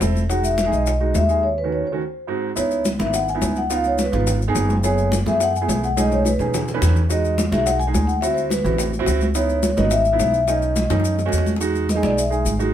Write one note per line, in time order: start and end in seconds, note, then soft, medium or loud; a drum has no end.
0.00 0.67 E1 medium
0.00 0.21 C4 medium
0.00 0.21 E4 medium
0.00 0.21 A4 loud
0.00 0.11 C5 medium
0.00 high bongo medium
0.00 low bongo medium
0.00 high conga medium
0.00 maracas medium
0.16 high conga medium
0.16 maracas soft
0.29 0.54 G#3 medium
0.29 0.55 D#4 medium
0.29 0.55 F#4 medium
0.29 0.36 F#5 medium
0.29 high bongo medium
0.29 maracas medium
0.44 0.73 E5 medium
0.44 high conga soft
0.44 maracas medium
0.58 high bongo medium
0.58 high conga medium
0.58 maracas medium
0.65 0.90 G#3 medium
0.65 0.91 D#4 medium
0.65 0.91 G#4 medium
0.72 1.12 B1 medium
0.72 1.12 D#5 medium
0.72 maracas soft
0.86 high bongo medium
0.86 high conga soft
0.86 maracas medium
1.00 1.21 G#3 medium
1.00 1.21 D#4 medium
1.00 1.21 F#4 medium
1.00 high conga soft
1.14 1.80 D#2 loud
1.14 1.45 E5 medium
1.14 high bongo medium
1.14 low bongo medium
1.14 high conga medium
1.14 maracas medium
1.28 1.43 G#3 medium
1.28 1.43 D#4 medium
1.28 1.43 G#4 medium
1.28 maracas soft
1.43 1.50 C#5 medium
1.58 1.73 B4 medium
1.64 1.84 D#3 medium
1.64 1.84 A3 medium
1.64 1.85 C#4 medium
1.64 1.85 F#4 medium
1.72 1.79 C#5 medium
1.87 2.40 C5 medium
1.92 2.00 D#3 medium
1.92 2.00 A3 medium
1.92 2.00 C#4 medium
1.92 2.00 F#4 medium
2.27 2.48 G#2 medium
2.27 2.48 C4 medium
2.27 2.48 D#4 medium
2.27 2.49 F#4 medium
2.56 2.97 C#2 medium
2.56 2.86 B3 medium
2.56 2.86 D#4 medium
2.56 2.86 E4 medium
2.56 2.84 C#5 medium
2.56 high bongo medium
2.56 high conga soft
2.56 maracas medium
2.71 high conga soft
2.71 maracas soft
2.85 high bongo medium
2.85 high conga medium
2.85 maracas medium
2.99 3.39 G#1 medium
2.99 3.24 B3 medium
2.99 3.24 D#4 medium
2.99 3.24 E4 medium
2.99 3.14 E5 medium
2.99 high conga loud
2.99 maracas soft
3.14 3.28 F#5 loud
3.14 high bongo medium
3.14 high conga soft
3.14 maracas medium
3.28 3.58 G#5 loud
3.28 high conga soft
3.28 maracas soft
3.35 3.60 B3 medium
3.35 3.60 D#4 medium
3.35 3.60 E4 medium
3.42 4.07 C#2 medium
3.42 high bongo medium
3.42 low bongo medium
3.42 high conga medium
3.42 maracas medium
3.56 3.72 F#5 medium
3.56 high conga medium
3.56 maracas soft
3.70 4.00 B3 medium
3.70 4.00 D#4 medium
3.70 4.00 F4 medium
3.70 3.85 F5 loud
3.70 high bongo medium
3.70 high conga soft
3.70 maracas medium
3.84 4.00 C#5 medium
3.84 high bongo soft
3.84 high conga soft
3.84 maracas soft
3.98 4.26 B4 medium
3.98 high bongo medium
3.98 high conga medium
3.98 maracas medium
4.12 4.53 G#1 loud
4.12 4.37 B3 medium
4.12 4.37 D#4 medium
4.12 4.38 F4 medium
4.12 high conga soft
4.12 low conga medium
4.12 maracas soft
4.27 high bongo medium
4.27 high conga soft
4.27 low conga medium
4.27 maracas medium
4.41 high bongo soft
4.41 high conga soft
4.41 maracas soft
4.48 4.73 B3 medium
4.48 4.73 D#4 medium
4.48 4.73 G#4 loud
4.55 5.21 F#1 medium
4.55 high bongo medium
4.55 low bongo medium
4.55 high conga soft
4.55 maracas medium
4.70 high bongo soft
4.70 high conga medium
4.70 maracas soft
4.83 5.13 A3 medium
4.83 5.13 B3 medium
4.83 5.13 E4 medium
4.83 5.14 G#4 medium
4.83 5.11 C#5 medium
4.83 high bongo medium
4.83 maracas medium
4.98 high conga soft
4.98 maracas soft
5.12 high bongo medium
5.12 high conga medium
5.12 maracas medium
5.26 5.66 F#2 medium
5.26 5.51 A3 medium
5.26 5.51 B3 medium
5.26 5.51 E4 medium
5.26 5.51 G#4 medium
5.26 5.40 E5 loud
5.26 high conga loud
5.26 maracas soft
5.40 5.48 F#5 medium
5.40 high bongo medium
5.40 high conga soft
5.40 maracas medium
5.55 5.85 G#5 loud
5.55 high conga soft
5.55 maracas soft
5.61 5.86 A3 medium
5.61 5.86 B3 medium
5.61 5.86 E4 medium
5.61 5.86 G#4 medium
5.68 6.34 B1 loud
5.68 high bongo medium
5.68 low bongo medium
5.68 high conga medium
5.68 maracas medium
5.84 5.90 F#5 medium
5.84 maracas soft
5.96 6.26 A3 medium
5.96 6.27 C#4 medium
5.96 6.27 D#4 medium
5.96 6.27 G#4 medium
5.96 6.08 D#5 medium
5.96 high bongo medium
5.96 high conga loud
5.96 maracas medium
6.08 6.12 C5 medium
6.08 high bongo soft
6.08 high conga medium
6.08 maracas soft
6.13 6.25 C#5 medium
6.25 6.52 B4 medium
6.25 high bongo medium
6.25 high conga loud
6.25 maracas medium
6.39 6.79 B2 medium
6.39 6.64 A3 medium
6.39 6.64 C#4 medium
6.39 6.64 D#4 medium
6.39 6.64 G#4 medium
6.39 low conga medium
6.39 maracas soft
6.54 high bongo medium
6.54 low conga loud
6.54 maracas medium
6.68 high bongo soft
6.68 low conga medium
6.68 maracas soft
6.74 6.99 A3 medium
6.74 6.99 C#4 medium
6.74 6.99 D#4 medium
6.74 6.99 B4 loud
6.82 7.47 E2 loud
6.82 high bongo medium
6.82 low bongo medium
6.82 low conga medium
6.82 maracas medium
6.96 high bongo soft
6.96 low conga medium
6.96 maracas soft
7.09 7.39 G#3 medium
7.09 7.39 D#4 medium
7.09 7.39 F#4 medium
7.09 7.37 D#5 medium
7.09 high bongo medium
7.09 high conga soft
7.09 maracas medium
7.25 high conga soft
7.25 maracas soft
7.38 high bongo medium
7.38 high conga loud
7.38 maracas medium
7.51 7.91 B1 medium
7.51 7.77 G#3 medium
7.51 7.77 D#4 medium
7.51 7.77 F#4 medium
7.51 7.67 E5 medium
7.51 high conga loud
7.51 maracas soft
7.66 7.79 F#5 medium
7.66 high bongo medium
7.66 high conga soft
7.66 maracas medium
7.80 8.06 G#5 loud
7.80 high conga soft
7.80 maracas soft
7.87 8.12 G#3 medium
7.87 8.12 D#4 medium
7.87 8.12 G#4 medium
7.94 8.59 D2 loud
7.94 high bongo medium
7.94 low bongo medium
7.94 high conga medium
7.94 maracas medium
8.07 8.23 F#5 medium
8.07 maracas soft
8.21 8.52 C4 medium
8.21 8.52 E4 medium
8.21 8.52 F#4 medium
8.21 8.28 E5 medium
8.21 high bongo medium
8.21 high conga soft
8.21 maracas medium
8.35 8.50 C5 medium
8.35 high bongo soft
8.35 high conga soft
8.35 maracas soft
8.49 8.76 B4 medium
8.49 high bongo medium
8.49 high conga medium
8.49 maracas medium
8.64 9.04 A1 loud
8.64 8.89 C4 medium
8.64 8.89 E4 medium
8.64 8.90 F#4 medium
8.64 high conga soft
8.64 low conga medium
8.64 maracas soft
8.78 high bongo medium
8.78 high conga soft
8.78 low conga medium
8.78 maracas medium
8.93 high bongo soft
8.93 high conga soft
8.93 maracas soft
8.99 9.24 C4 loud
8.99 9.24 E4 medium
8.99 9.25 F#4 loud
9.06 9.72 C#2 medium
9.06 high bongo medium
9.06 low bongo medium
9.06 high conga soft
9.06 maracas medium
9.21 high bongo soft
9.21 high conga medium
9.21 maracas soft
9.35 9.65 B3 medium
9.35 9.65 D#4 medium
9.35 9.65 E4 medium
9.35 9.79 C#5 medium
9.35 high bongo medium
9.35 maracas medium
9.49 high conga soft
9.49 maracas soft
9.63 high bongo medium
9.63 high conga loud
9.63 maracas medium
9.77 10.17 G#1 loud
9.77 10.02 B3 medium
9.77 10.02 D#4 medium
9.77 10.02 F#4 medium
9.77 9.91 D#5 loud
9.77 high conga loud
9.77 maracas soft
9.91 10.49 E5 loud
9.91 high bongo medium
9.91 high conga soft
9.91 maracas medium
10.05 high conga soft
10.05 maracas soft
10.12 10.37 B3 medium
10.12 10.38 D#4 medium
10.12 10.38 E4 medium
10.19 10.85 B1 medium
10.19 high bongo medium
10.19 low bongo medium
10.19 high conga medium
10.19 maracas medium
10.34 maracas soft
10.47 10.78 A3 medium
10.47 10.78 C#4 medium
10.47 10.78 D#4 medium
10.47 11.43 D#5 medium
10.47 high bongo medium
10.47 high conga soft
10.47 maracas medium
10.62 high bongo soft
10.62 high conga soft
10.62 maracas soft
10.76 high bongo medium
10.76 high conga medium
10.76 maracas medium
10.90 11.30 F#2 medium
10.90 11.15 A3 medium
10.90 11.15 C#4 medium
10.90 11.15 D#4 medium
10.90 high bongo medium
10.90 high conga soft
10.90 low conga medium
10.90 maracas soft
11.00 high bongo medium
11.05 high conga soft
11.05 maracas medium
11.19 low bongo medium
11.19 high conga soft
11.19 maracas soft
11.25 11.50 A3 loud
11.25 11.51 C#4 medium
11.25 11.51 F#4 loud
11.25 low bongo medium
11.33 11.98 E2 medium
11.33 high conga soft
11.33 maracas medium
11.38 low bongo medium
11.46 high conga medium
11.46 maracas soft
11.56 low bongo medium
11.60 11.86 G#3 medium
11.60 11.86 D#4 medium
11.60 11.86 F#4 loud
11.60 high conga soft
11.60 maracas medium
11.75 high conga soft
11.75 maracas soft
11.89 12.04 D#5 medium
11.89 high conga medium
11.89 maracas medium
11.95 12.21 G#3 medium
11.95 12.21 D#4 medium
11.95 12.21 G#4 medium
12.03 12.43 B1 medium
12.03 12.17 D5 medium
12.03 high conga loud
12.03 maracas soft
12.17 12.44 E5 medium
12.17 high conga soft
12.17 maracas medium
12.30 12.51 G#3 medium
12.30 12.51 D#4 medium
12.30 12.51 G#4 medium
12.30 high conga soft
12.30 maracas soft
12.45 12.74 G#1 medium
12.45 high conga medium
12.45 maracas medium
12.59 12.74 G#3 medium
12.59 12.74 D#4 medium
12.59 12.74 F#4 loud
12.59 high conga medium
12.59 maracas soft